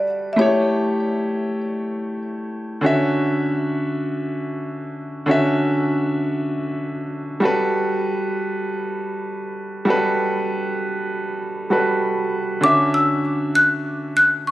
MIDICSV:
0, 0, Header, 1, 3, 480
1, 0, Start_track
1, 0, Key_signature, 2, "major"
1, 0, Tempo, 612245
1, 303, Time_signature, 4, 2, 24, 8
1, 11376, End_track
2, 0, Start_track
2, 0, Title_t, "Marimba"
2, 0, Program_c, 0, 12
2, 0, Note_on_c, 0, 74, 95
2, 258, Note_on_c, 0, 76, 67
2, 269, Note_off_c, 0, 74, 0
2, 305, Note_off_c, 0, 76, 0
2, 307, Note_on_c, 0, 73, 90
2, 1714, Note_off_c, 0, 73, 0
2, 9906, Note_on_c, 0, 86, 103
2, 10014, Note_off_c, 0, 86, 0
2, 10146, Note_on_c, 0, 88, 102
2, 10627, Note_on_c, 0, 90, 111
2, 10639, Note_off_c, 0, 88, 0
2, 11074, Note_off_c, 0, 90, 0
2, 11107, Note_on_c, 0, 90, 106
2, 11347, Note_on_c, 0, 85, 89
2, 11352, Note_off_c, 0, 90, 0
2, 11376, Note_off_c, 0, 85, 0
2, 11376, End_track
3, 0, Start_track
3, 0, Title_t, "Grand piano"
3, 0, Program_c, 1, 0
3, 0, Control_c, 1, 64, 127
3, 284, Note_on_c, 1, 57, 68
3, 297, Note_on_c, 1, 64, 62
3, 310, Note_on_c, 1, 67, 63
3, 314, Control_c, 1, 64, 0
3, 323, Note_on_c, 1, 73, 77
3, 446, Control_c, 1, 64, 127
3, 2182, Note_off_c, 1, 57, 0
3, 2189, Note_off_c, 1, 64, 0
3, 2196, Note_off_c, 1, 67, 0
3, 2202, Note_off_c, 1, 73, 0
3, 2204, Note_on_c, 1, 50, 74
3, 2217, Note_on_c, 1, 61, 69
3, 2230, Note_on_c, 1, 66, 70
3, 2234, Control_c, 1, 64, 0
3, 2243, Note_on_c, 1, 76, 85
3, 2366, Control_c, 1, 64, 127
3, 4102, Note_off_c, 1, 50, 0
3, 4109, Note_off_c, 1, 61, 0
3, 4116, Note_off_c, 1, 66, 0
3, 4122, Note_off_c, 1, 76, 0
3, 4124, Note_on_c, 1, 50, 74
3, 4137, Note_on_c, 1, 61, 67
3, 4150, Note_on_c, 1, 66, 71
3, 4163, Note_on_c, 1, 76, 84
3, 5782, Note_off_c, 1, 50, 0
3, 5789, Note_off_c, 1, 61, 0
3, 5795, Note_off_c, 1, 66, 0
3, 5802, Note_off_c, 1, 76, 0
3, 5803, Note_on_c, 1, 55, 75
3, 5817, Note_on_c, 1, 66, 71
3, 5830, Note_on_c, 1, 69, 71
3, 5833, Control_c, 1, 64, 0
3, 5843, Note_on_c, 1, 71, 84
3, 5958, Control_c, 1, 64, 127
3, 7702, Note_off_c, 1, 55, 0
3, 7709, Note_off_c, 1, 66, 0
3, 7715, Note_off_c, 1, 69, 0
3, 7722, Note_off_c, 1, 71, 0
3, 7723, Note_on_c, 1, 55, 76
3, 7737, Note_on_c, 1, 66, 69
3, 7750, Note_on_c, 1, 69, 69
3, 7763, Note_on_c, 1, 71, 80
3, 9144, Note_off_c, 1, 55, 0
3, 9151, Note_off_c, 1, 66, 0
3, 9158, Note_off_c, 1, 69, 0
3, 9165, Note_off_c, 1, 71, 0
3, 9173, Note_on_c, 1, 55, 58
3, 9180, Note_on_c, 1, 66, 55
3, 9187, Note_on_c, 1, 69, 55
3, 9193, Note_on_c, 1, 71, 65
3, 9884, Note_on_c, 1, 50, 70
3, 9897, Note_on_c, 1, 61, 61
3, 9898, Note_off_c, 1, 55, 0
3, 9898, Note_off_c, 1, 66, 0
3, 9905, Note_off_c, 1, 69, 0
3, 9908, Note_off_c, 1, 71, 0
3, 9910, Note_on_c, 1, 66, 62
3, 9913, Control_c, 1, 64, 0
3, 9923, Note_on_c, 1, 76, 77
3, 10072, Control_c, 1, 64, 127
3, 11376, Note_off_c, 1, 50, 0
3, 11376, Note_off_c, 1, 61, 0
3, 11376, Note_off_c, 1, 66, 0
3, 11376, Note_off_c, 1, 76, 0
3, 11376, End_track
0, 0, End_of_file